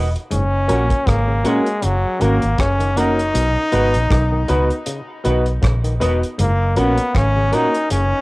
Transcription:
0.00 0.14 E1 medium
0.16 closed hi-hat medium
0.31 0.68 F#1 loud
0.31 0.45 G#2 medium
0.31 1.10 C#4 loud
0.31 closed hi-hat loud
0.68 0.90 A#1 medium
0.68 0.83 A#2 medium
0.68 0.88 A#3 medium
0.68 0.88 C#4 medium
0.68 0.84 C#4 medium
0.68 0.88 F#4 medium
0.68 0.85 F#4 medium
0.68 0.88 A#4 medium
0.68 0.85 A#4 medium
0.68 closed hi-hat medium
0.90 kick medium
0.90 closed hi-hat medium
1.06 1.43 G#1 medium
1.06 1.20 C#3 medium
1.06 1.48 A#3 medium
1.06 kick loud
1.06 cross-stick medium
1.06 closed hi-hat medium
1.28 1.39 C#3 medium
1.44 1.58 A#2 medium
1.44 1.86 G#3 medium
1.44 1.64 A#3 medium
1.44 1.64 C#4 medium
1.44 1.60 C#4 medium
1.44 1.64 F#4 medium
1.44 1.60 F#4 medium
1.44 1.64 A#4 loud
1.44 1.61 A#4 loud
1.44 closed hi-hat medium
1.67 closed hi-hat medium
1.82 2.04 F#1 medium
1.82 1.96 C#3 medium
1.82 2.23 F#3 medium
1.82 closed hi-hat loud
2.19 2.42 G#1 medium
2.19 2.34 D#3 medium
2.19 2.40 A#3 medium
2.19 2.61 A#3 medium
2.19 2.36 C#4 medium
2.19 2.40 C#4 medium
2.19 2.40 F#4 medium
2.19 2.36 F#4 medium
2.19 2.40 A#4 medium
2.19 2.37 A#4 medium
2.19 closed hi-hat medium
2.42 2.59 G#1 medium
2.42 muted clean electric guitar stroke soft
2.42 closed hi-hat soft
2.58 3.31 F#1 medium
2.58 2.73 C#3 medium
2.58 2.99 C#4 loud
2.58 kick loud
2.58 cross-stick loud
2.58 closed hi-hat medium
2.80 2.91 D#3 medium
2.80 closed hi-hat soft
2.96 3.10 D#3 medium
2.96 3.16 A#3 medium
2.96 3.12 C#4 medium
2.96 3.16 C#4 medium
2.96 4.87 D#4 loud
2.96 3.12 F#4 medium
2.96 3.16 F#4 medium
2.96 3.12 A#4 medium
2.96 3.16 A#4 loud
2.96 closed hi-hat medium
3.19 closed hi-hat medium
3.34 3.56 B1 loud
3.34 3.48 B2 medium
3.34 closed hi-hat loud
3.72 3.94 G#1 medium
3.72 3.87 C#3 medium
3.72 3.92 B3 medium
3.72 3.92 D#4 medium
3.72 3.87 F#4 medium
3.72 3.92 F#4 medium
3.72 3.92 B4 loud
3.72 3.88 B4 medium
3.72 3.88 D#5 medium
3.72 closed hi-hat medium
3.94 4.10 A#1 medium
3.94 closed hi-hat medium
4.10 4.47 B1 medium
4.10 4.24 D#3 medium
4.10 kick loud
4.10 cross-stick loud
4.10 closed hi-hat medium
4.32 4.43 D#3 medium
4.48 4.70 C#2 medium
4.48 4.63 B2 medium
4.48 4.68 B3 medium
4.48 4.68 D#4 medium
4.48 4.64 F#4 medium
4.48 4.68 F#4 medium
4.48 4.68 B4 loud
4.48 4.64 B4 medium
4.48 4.65 D#5 medium
4.48 closed hi-hat medium
4.70 closed hi-hat medium
4.86 5.01 C#3 medium
4.86 closed hi-hat loud
5.24 5.61 B1 medium
5.24 5.39 D#3 medium
5.24 5.43 B3 medium
5.24 5.44 D#4 medium
5.24 5.40 F#4 medium
5.24 5.44 F#4 medium
5.24 5.40 B4 medium
5.24 5.44 B4 medium
5.24 5.40 D#5 medium
5.24 closed hi-hat medium
5.46 muted clean electric guitar stroke soft
5.46 closed hi-hat soft
5.62 5.99 A#1 loud
5.62 5.76 C#3 medium
5.62 kick loud
5.62 cross-stick loud
5.62 closed hi-hat medium
5.84 5.95 D#3 medium
5.84 muted clean electric guitar stroke soft
5.84 closed hi-hat medium
6.00 6.22 E1 medium
6.00 6.14 D#3 medium
6.00 6.20 B3 medium
6.00 6.20 D#4 medium
6.00 6.16 F#4 medium
6.00 6.20 F#4 medium
6.00 6.20 B4 loud
6.00 6.16 B4 medium
6.00 6.17 D#5 loud
6.00 closed hi-hat medium
6.23 closed hi-hat medium
6.38 6.75 F#1 loud
6.38 6.52 G#2 medium
6.38 6.80 A#3 loud
6.38 closed hi-hat loud
6.76 6.97 A#1 loud
6.76 6.90 A#2 medium
6.76 6.95 A#3 medium
6.76 7.17 B3 loud
6.76 6.96 C#4 medium
6.76 6.92 C#4 medium
6.76 6.96 F#4 medium
6.76 6.92 F#4 medium
6.76 6.96 A#4 loud
6.76 6.93 A#4 medium
6.76 closed hi-hat medium
6.97 closed hi-hat medium
7.14 7.51 G#1 medium
7.14 7.28 C#3 medium
7.14 7.55 C#4 loud
7.14 kick loud
7.14 cross-stick loud
7.14 closed hi-hat medium
7.36 7.47 C#3 medium
7.52 7.67 A#2 medium
7.52 7.71 A#3 medium
7.52 7.72 C#4 medium
7.52 7.68 C#4 medium
7.52 7.91 D#4 loud
7.52 7.72 F#4 medium
7.52 7.68 F#4 medium
7.52 7.72 A#4 loud
7.52 7.69 A#4 medium
7.52 closed hi-hat medium
7.74 closed hi-hat medium
7.90 8.12 F#1 medium
7.90 8.05 C#3 medium
7.90 8.21 C#4 loud
7.90 closed hi-hat loud

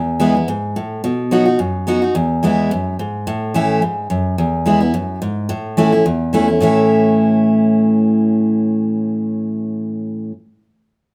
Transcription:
0.00 0.45 E2 medium
0.20 0.34 E3 medium
0.20 0.34 G#3 loud
0.20 0.35 B3 medium
0.20 0.34 E4 loud
0.35 0.48 B3 medium
0.35 0.47 E4 medium
0.48 0.74 G#2 medium
0.76 1.02 A2 medium
1.04 1.57 B2 loud
1.31 1.46 F#3 medium
1.31 1.46 B3 medium
1.31 1.46 D#4 medium
1.31 1.44 F#4 loud
1.46 1.59 D#4 medium
1.46 1.58 F#4 medium
1.59 2.12 F#2 medium
1.87 2.01 F#3 medium
1.87 2.02 B3 medium
1.87 2.02 D#4 medium
1.87 2.01 F#4 loud
2.02 2.15 D#4 soft
2.02 2.14 F#4 medium
2.15 2.68 E2 loud
2.43 2.69 E3 medium
2.43 2.70 G#3 medium
2.43 2.70 B3 loud
2.43 2.70 E4 loud
2.71 2.98 F#2 medium
2.99 3.26 G#2 medium
3.27 3.80 A2 loud
3.54 3.81 E3 medium
3.54 3.81 A3 medium
3.54 3.82 C#4 loud
3.54 3.82 E4 loud
3.82 4.09 G#2 medium
4.10 4.37 F#2 medium
4.38 4.91 E2 medium
4.66 4.80 E3 medium
4.66 4.81 G#3 medium
4.66 4.81 B3 medium
4.66 4.79 E4 loud
4.80 4.94 B3 medium
4.80 4.93 E4 medium
4.94 5.20 F#2 medium
5.22 5.48 G#2 medium
5.49 6.03 A2 loud
5.77 5.92 E3 loud
5.77 5.92 A3 loud
5.77 5.92 C#4 loud
5.77 5.91 E4 medium
5.92 6.06 C#4 soft
5.92 6.05 E4 medium
6.06 6.59 E2 medium
6.33 6.47 E3 medium
6.33 6.48 A3 medium
6.33 6.48 C#4 loud
6.33 6.47 E4 loud
6.48 6.61 C#4 soft
6.48 6.60 E4 medium
6.61 10.31 A2 medium
6.61 10.32 E3 medium
6.61 10.32 A3 medium
6.61 10.33 C#4 medium
6.61 10.33 E4 loud

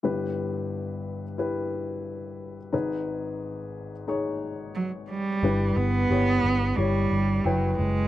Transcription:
0.03 2.69 G1 medium
0.03 2.69 G2 soft
0.03 1.22 E4 medium
0.03 1.22 G4 medium
0.03 1.22 B4 medium
1.38 2.57 E4 medium
1.38 2.57 G4 medium
1.38 2.57 B4 medium
2.73 5.39 G#1 medium
2.73 5.39 G#2 medium
2.73 3.91 D#4 medium
2.73 3.92 G#4 medium
2.73 3.92 B4 medium
4.08 5.26 D#4 medium
4.08 5.27 G#4 medium
4.08 5.27 C#5 medium
4.75 4.90 F#3 medium
5.09 5.78 G3 medium
5.43 5.71 G1 medium
5.43 6.41 G2 medium
5.43 6.02 E4 medium
5.43 6.03 G4 medium
5.43 6.03 B4 medium
5.77 6.04 G1 medium
5.77 6.78 B3 loud
6.10 6.38 G1 medium
6.10 6.70 E4 medium
6.10 6.70 G4 medium
6.10 6.70 C#5 medium
6.44 6.72 G1 medium
6.77 7.05 G1 medium
6.77 7.46 G3 medium
6.77 7.37 E4 medium
6.77 7.37 G4 soft
6.77 7.38 C#5 medium
7.11 7.39 G1 medium
7.44 7.73 F#1 medium
7.44 7.77 F#3 medium
7.44 8.05 E4 medium
7.44 8.05 B4 medium
7.44 8.05 G5 medium
7.77 8.07 F#1 medium
7.77 8.08 G#3 medium

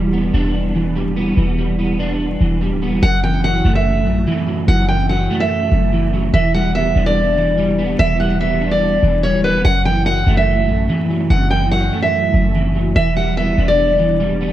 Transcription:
0.00 0.31 E1 loud
0.00 0.74 E3 loud
0.00 0.95 G3 medium
0.13 1.15 B3 medium
0.34 1.33 E1 loud
0.34 1.37 D4 medium
0.75 1.36 E3 medium
0.96 1.57 G3 medium
1.16 1.77 B3 medium
1.37 2.37 E1 loud
1.37 2.39 E3 medium
1.58 2.60 G3 medium
1.79 2.81 B3 medium
1.99 3.03 D4 medium
2.41 2.73 E1 loud
2.41 3.03 E3 medium
2.61 3.03 G3 medium
2.72 2.89 D1 loud
2.82 3.03 B3 medium
2.87 3.02 E1 loud
3.03 3.62 F#1 loud
3.03 4.05 F#2 medium
3.03 3.19 F#5 loud
3.23 4.26 E3 medium
3.23 3.40 G5 medium
3.44 4.46 F#3 medium
3.44 3.73 F#5 medium
3.65 4.08 F#1 loud
3.65 4.68 A3 medium
3.75 4.64 E5 medium
4.06 4.26 A1 loud
4.06 4.67 F#2 medium
4.27 4.88 E3 loud
4.48 5.08 F#3 medium
4.68 5.28 F#1 loud
4.68 5.70 F#2 loud
4.68 4.85 F#5 loud
4.88 5.91 E3 medium
4.88 5.05 G5 medium
5.09 6.12 F#3 medium
5.09 5.39 F#5 medium
5.30 6.34 A3 medium
5.40 6.30 E5 medium
5.72 6.31 F#1 loud
5.72 6.34 F#2 medium
5.92 6.32 E3 medium
6.13 6.34 F#3 medium
6.34 6.93 E1 loud
6.34 7.36 E3 medium
6.34 6.50 E5 loud
6.54 7.57 G3 medium
6.54 6.71 F#5 medium
6.75 7.77 B3 medium
6.75 7.04 E5 loud
6.96 7.95 E1 loud
6.96 7.99 D4 medium
7.06 7.95 D5 loud
7.37 7.98 E3 medium
7.58 8.19 G3 medium
7.78 8.39 B3 medium
7.99 8.99 E1 loud
7.99 9.01 E3 medium
7.99 8.16 E5 loud
8.20 9.22 G3 medium
8.20 8.37 F#5 medium
8.41 9.43 B3 medium
8.41 8.70 E5 medium
8.61 9.65 D4 medium
8.71 9.20 D5 medium
9.03 9.35 E1 loud
9.03 9.65 E3 medium
9.23 9.65 G3 medium
9.23 9.40 C#5 medium
9.34 9.51 D1 loud
9.44 9.65 B3 medium
9.44 9.61 B4 medium
9.49 9.64 E1 loud
9.65 10.24 F#1 loud
9.65 10.67 F#2 medium
9.65 9.81 F#5 loud
9.85 10.88 E3 medium
9.85 10.02 G5 medium
10.06 11.08 F#3 medium
10.06 10.35 F#5 loud
10.27 10.70 F#1 loud
10.27 11.30 A3 loud
10.37 11.26 E5 medium
10.68 10.88 A1 loud
10.68 11.29 F#2 medium
10.89 11.50 E3 loud
11.10 11.70 F#3 medium
11.30 11.90 F#1 loud
11.30 12.33 F#2 loud
11.30 11.47 F#5 loud
11.51 12.53 E3 medium
11.51 11.67 G5 medium
11.72 12.74 F#3 medium
11.72 12.01 F#5 medium
11.92 12.96 A3 medium
12.02 12.92 E5 medium
12.34 12.93 F#1 loud
12.34 12.96 F#2 medium
12.54 12.95 E3 medium
12.75 12.96 F#3 medium
12.96 13.55 E1 loud
12.96 13.98 E3 loud
12.96 13.12 E5 loud
13.16 14.19 G3 medium
13.16 13.33 F#5 medium
13.37 14.39 B3 medium
13.37 13.66 E5 loud
13.58 14.53 E1 loud
13.58 14.53 D4 medium
13.68 14.53 D5 medium
13.99 14.53 E3 medium
14.20 14.53 G3 medium
14.41 14.53 B3 medium

